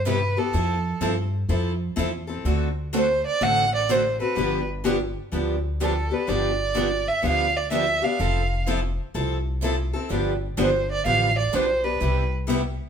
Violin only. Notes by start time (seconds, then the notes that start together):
0.07 B4
0.38 A4
2.97 C5
3.26 D5
3.44 F#5
3.75 D5
3.91 C5
4.21 B4
5.82 A4
6.14 B4
6.29 D5
7.08 E5
7.26 F5
7.57 D5
7.72 E5
8.04 F5
10.62 C5
10.92 D5
11.07 F5
11.38 D5
11.55 C5
11.84 B4